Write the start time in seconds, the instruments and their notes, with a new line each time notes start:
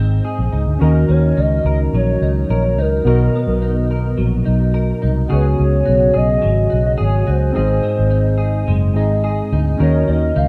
Already playing: fingered electric bass G#1, clean electric guitar G#2 C4 D#4 G#4, synth keys C4 D#4 G#4 D#5
0.25 clean electric guitar G#4
0.39 fingered electric bass A#1
0.53 fingered electric bass C#2, clean electric guitar D#4
0.67 fingered electric bass D2
0.79 fingered electric bass D#2, clean electric guitar D#3 A#4, synth keys C#4 F#4 A#4, soft synth lead A#4
0.83 synth keys D#5
1.09 fingered electric bass D#2, clean electric guitar C#4, soft synth lead C#5
1.37 fingered electric bass C#2, clean electric guitar D#4, soft synth lead D#5
1.65 fingered electric bass C#2, clean electric guitar A#4, soft synth lead D#5
1.93 fingered electric bass A#1, clean electric guitar F#3, soft synth lead C#5
2.22 fingered electric bass C#2, clean electric guitar D#4
2.38 soft synth lead C#5
2.50 fingered electric bass A#1, clean electric guitar A#4
2.78 fingered electric bass C#2, clean electric guitar D#4, soft synth lead A#4
3.04 fingered electric bass B1, clean electric guitar B2 A#4, synth keys B3 F#4 A#4
3.09 synth keys D#5
3.35 clean electric guitar B3
3.47 fingered electric bass B1
3.62 clean electric guitar D#4
3.91 clean electric guitar A#4
4.17 fingered electric bass A#1, clean electric guitar F#3
4.45 fingered electric bass B1, clean electric guitar D#4
4.74 clean electric guitar A#4
5.02 fingered electric bass C2, clean electric guitar D#4
5.28 fingered electric bass C#2, clean electric guitar C#3 G#4, synth keys B3 F#4 G#4
5.33 soft synth lead B4, synth keys C#5
5.60 fingered electric bass C#2, soft synth lead C#5
5.86 fingered electric bass B1, clean electric guitar F#4
6.14 fingered electric bass B1, clean electric guitar G#4, soft synth lead D#5
6.42 fingered electric bass G#1, clean electric guitar F#3
6.70 fingered electric bass B1, clean electric guitar F#4
6.86 soft synth lead D#5
6.98 fingered electric bass G#1, clean electric guitar G#4
7.02 soft synth lead C#5
7.27 fingered electric bass C#2, clean electric guitar F#4, soft synth lead C5
7.52 clean electric guitar G#2, synth keys C4 D#4 G#4
7.56 fingered electric bass G#1, clean electric guitar G#4, synth keys D#5
7.83 clean electric guitar C4
7.99 fingered electric bass G#1
8.11 clean electric guitar D#4
8.38 clean electric guitar G#4
8.68 fingered electric bass F#1, clean electric guitar G#3
8.94 fingered electric bass G#1, synth keys C4 D#4 G#4 D#5, clean electric guitar D#4
9.24 clean electric guitar G#4
9.52 fingered electric bass D2, clean electric guitar D#4
9.78 fingered electric bass D#2, clean electric guitar D#3 A#4, synth keys C#4 F#4 A#4, soft synth lead C#5
9.83 synth keys D#5
10.08 fingered electric bass D#2, clean electric guitar C#4, soft synth lead D#5
10.36 fingered electric bass C#2, clean electric guitar D#4, soft synth lead F5